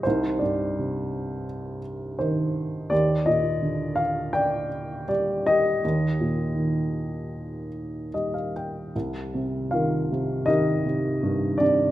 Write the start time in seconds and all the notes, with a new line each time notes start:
0.03 C2 D#4 C5
0.39 G2 G4 D5
0.79 C3
2.19 D#3 C5
2.90 D#2 G4 D5
3.26 A#2 D#5
3.62 D3
3.96 F5
4.33 D5 G5
5.08 G3 D5
5.46 G4 D#5
5.84 D#2
6.20 A#2
6.56 D#3
8.14 G3 D#5
8.34 F5
8.56 G5
8.95 C2
9.34 C3
9.71 D#3 F4 A#4 F5
10.12 C3
10.46 D#3 D#4 G4 A#4 D#5
10.86 C3
11.23 G2
11.58 C3 D4 D5